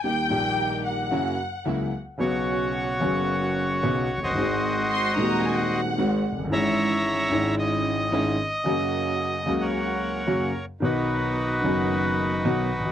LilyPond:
<<
  \new Staff \with { instrumentName = "Violin section" } { \time 4/4 \key fis \mixolydian \tempo 4 = 111 g''4. fis''2 r8 | \key b \major r1 | r4 bis''8 ais''8 gis''16 fis''4. r16 | r1 |
r1 | r1 | }
  \new Staff \with { instrumentName = "Bandoneon" } { \time 4/4 \key fis \mixolydian << { r1 | \key b \major cis''2.~ cis''8. dis''16~ | dis''2~ dis''8. r4 r16 | ais''2 dis''2~ |
dis''4.~ dis''16 fis''4.~ fis''16 r8 | b'1 | } \\ { r1 | fis'2.~ fis'8. <fis' c''>16~ | <fis' c''>2~ <fis' c''>8. r4 r16 | <cis'' e''>2 r2 |
r4. r16 <ais' cis''>2 r16 | <dis' fis'>1 | } >> }
  \new Staff \with { instrumentName = "String section" } { \time 4/4 \key fis \mixolydian <ais dis' g'>8 <ais dis' g'>4. <ais e' fis'>8 r8 <ais e' fis'>8 r8 | \key b \major <b cis' fis'>4. <b cis' fis'>4. <b cis' fis'>8 r8 | <gis bis fis'>4. <gis bis fis'>4. <gis bis fis'>8 r8 | <gis cis' e'>4. <gis cis' e'>4. <gis cis' dis' e'>8 r8 |
<ais cis' fis'>4. <ais cis' fis'>4. <ais cis' fis'>8 r8 | <b dis' fis'>4. <b dis' fis'>4. <b dis' fis'>8 r8 | }
  \new Staff \with { instrumentName = "Grand piano" } { \clef bass \time 4/4 \key fis \mixolydian <dis, dis g ais g'>8 <ais,, ais, dis g ais g'>4. <fis, cis fis ais e'>8 r8 <cis, cis fis ais e'>8 r8 | \key b \major <b,, b, cis fis b fis'>4. <fis,, fis, cis fis b fis'>4. <b,, b, cis fis b fis'>8 r32 eis,,32 fis,,32 g,,32 | <gis,, gis, dis gis bis fis'>4. <dis,, dis, dis gis bis fis'>4. <gis,, gis, dis gis bis fis'>8 r32 eis,,32 fis,,32 g,,32 | <gis,, gis, e gis cis' e'>4. <gis,, gis, gis cis' dis' e'>4. <gis,, gis, dis gis cis' e'>8 r8 |
<fis, cis fis ais fis'>4. <cis, cis fis ais fis'>4. <fis, cis fis ais fis'>8 r8 | <b,, b, dis fis b fis'>4. <fis,, fis, dis fis b fis'>4. <b,, b, dis fis b fis'>8 r32 ais,,32 b,,32 r32 | }
>>